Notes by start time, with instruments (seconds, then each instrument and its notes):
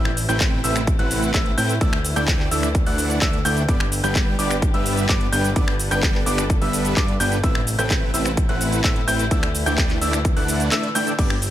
Already playing: analog synth bass A1, string section C3 A3 E4 B4, supersaw synth A3 C4 E4 B4 E5, grand piano E6
0.05 finger snap
0.17 open hi-hat, cabasa
0.29 analog synth bass A1, supersaw synth A3 C4 E4 B4 G5, grand piano G6, closed hi-hat, cabasa
0.40 kick, clap, closed hi-hat, cabasa
0.64 analog synth bass A1, supersaw synth A3 C4 E4 B4 E5, grand piano E6, open hi-hat, cabasa
0.76 finger snap, closed hi-hat, cabasa
0.87 kick, closed hi-hat, cabasa
0.99 analog synth bass A1, supersaw synth A3 C4 E4 B4 F#5, grand piano F#6, closed hi-hat
1.11 open hi-hat, cabasa
1.22 closed hi-hat, cabasa
1.34 analog synth bass A1, supersaw synth A3 C4 E4 B4 E5, grand piano E6, kick, clap, closed hi-hat, cabasa
1.46 closed hi-hat
1.58 analog synth bass A2, supersaw synth A3 C4 E4 B4 G5, grand piano G6, open hi-hat, cabasa
1.69 closed hi-hat, cabasa
1.81 analog synth bass D2, string section D3 E3, supersaw synth A3 D4 E4 D5 E5, grand piano E6, kick, closed hi-hat, cabasa
1.93 finger snap
2.05 open hi-hat, cabasa
2.16 analog synth bass D2, supersaw synth A3 D4 E4 D5 G5, grand piano G6, closed hi-hat, cabasa
2.28 kick, clap, closed hi-hat, cabasa
2.40 clap
2.51 analog synth bass D2, supersaw synth A3 D4 E4 D5 E5, grand piano E6, open hi-hat, cabasa
2.63 finger snap, closed hi-hat, cabasa
2.75 kick, closed hi-hat, cabasa
2.86 analog synth bass D2, supersaw synth A3 D4 E4 D5 F#5, grand piano F#6, open hi-hat
2.98 open hi-hat, cabasa
3.10 closed hi-hat, cabasa
3.22 analog synth bass D2, supersaw synth A3 D4 E4 D5 E5, grand piano E6, kick, clap, closed hi-hat, cabasa
3.33 closed hi-hat
3.45 analog synth bass D2, supersaw synth A3 D4 E4 D5 G5, grand piano G6, open hi-hat, cabasa
3.57 closed hi-hat, cabasa
3.68 analog synth bass G1, string section G3 G4 B4, supersaw synth G3 B3 D4 B4 D5, grand piano D6, kick, closed hi-hat, cabasa
3.80 finger snap
3.92 open hi-hat, cabasa
4.04 analog synth bass G1, supersaw synth G3 B3 D4 B4 G5, grand piano G6, closed hi-hat, cabasa
4.15 kick, clap, closed hi-hat, cabasa
4.39 analog synth bass G1, supersaw synth G3 B3 D4 B4 D5, grand piano D6, open hi-hat, cabasa
4.51 finger snap, closed hi-hat, cabasa
4.62 kick, closed hi-hat, cabasa
4.74 analog synth bass G1, supersaw synth G3 B3 D4 B4 E5, grand piano E6, closed hi-hat
4.86 open hi-hat, cabasa
4.97 closed hi-hat, cabasa
5.09 analog synth bass G1, supersaw synth G3 B3 D4 B4 D5, grand piano D6, kick, clap, closed hi-hat, cabasa
5.21 closed hi-hat
5.32 analog synth bass G1, supersaw synth G3 B3 D4 B4 G5, grand piano G6, open hi-hat, cabasa
5.44 closed hi-hat, cabasa
5.56 analog synth bass G1, supersaw synth G3 B3 D4 B4 D5, string section A4, grand piano D6, kick, closed hi-hat, cabasa
5.68 finger snap
5.79 open hi-hat, cabasa
5.91 analog synth bass G1, supersaw synth G3 B3 D4 B4 G5, grand piano G6, closed hi-hat, cabasa
6.03 kick, clap, closed hi-hat, cabasa
6.15 clap
6.26 analog synth bass G1, supersaw synth G3 B3 D4 B4 D5, grand piano D6, open hi-hat, cabasa
6.38 finger snap, closed hi-hat, cabasa
6.50 kick, closed hi-hat, cabasa
6.61 analog synth bass G1, supersaw synth G3 B3 D4 B4 E5, grand piano E6, open hi-hat
6.73 open hi-hat, cabasa
6.85 closed hi-hat, cabasa
6.97 analog synth bass G2, supersaw synth G3 B3 D4 B4 D5, grand piano D6, kick, clap, closed hi-hat, cabasa
7.08 closed hi-hat
7.20 analog synth bass G1, supersaw synth G3 B3 D4 B4 G5, grand piano G6, open hi-hat, cabasa
7.32 closed hi-hat, cabasa
7.43 analog synth bass A1, string section C3 A3 E4, supersaw synth A3 C4 E4 B4 E5, grand piano E6, kick, closed hi-hat, cabasa
7.55 finger snap
7.67 open hi-hat, cabasa
7.79 analog synth bass A1, supersaw synth A3 C4 E4 B4 G5, grand piano G6, closed hi-hat, cabasa
7.90 kick, clap, closed hi-hat, cabasa
8.14 analog synth bass A1, supersaw synth A3 C4 E4 B4 E5, grand piano E6, open hi-hat, cabasa
8.26 finger snap, closed hi-hat, cabasa
8.37 kick, closed hi-hat, cabasa
8.49 analog synth bass A1, supersaw synth A3 C4 E4 B4 F#5, grand piano F#6, closed hi-hat
8.61 open hi-hat, cabasa
8.72 closed hi-hat, cabasa
8.84 analog synth bass A2, supersaw synth A3 C4 E4 B4 E5, grand piano E6, kick, clap, closed hi-hat, cabasa
8.96 closed hi-hat
9.08 analog synth bass A1, supersaw synth A3 C4 E4 B4 G5, grand piano G6, open hi-hat, cabasa
9.19 closed hi-hat, cabasa
9.31 analog synth bass D2, string section D3 E3 A3, supersaw synth A3 D4 E4 D5 E5, grand piano E6, kick, closed hi-hat, cabasa
9.43 finger snap, closed hi-hat
9.55 open hi-hat, cabasa
9.66 analog synth bass D2, supersaw synth A3 D4 E4 D5 G5, grand piano G6, closed hi-hat, cabasa
9.78 kick, clap, closed hi-hat, cabasa
9.90 clap, closed hi-hat
10.01 analog synth bass D2, supersaw synth A3 D4 E4 D5 E5, grand piano E6, open hi-hat, cabasa
10.13 finger snap, closed hi-hat, cabasa
10.25 kick, closed hi-hat, cabasa
10.37 analog synth bass D2, supersaw synth A3 D4 E4 D5 F#5, grand piano F#6, open hi-hat
10.48 open hi-hat, cabasa
10.60 closed hi-hat, cabasa
10.72 supersaw synth A3 D4 E4 D5 E5, grand piano E6, clap, closed hi-hat, cabasa
10.83 closed hi-hat
10.95 supersaw synth A3 D4 E4 D5 G5, grand piano G6, open hi-hat, cabasa
11.07 closed hi-hat, cabasa
11.18 analog synth bass G1, string section G3 B3 G4, supersaw synth G3 B3 D4 B4 D5, grand piano D6, kick, closed hi-hat, crash, cabasa
11.30 finger snap
11.42 open hi-hat, cabasa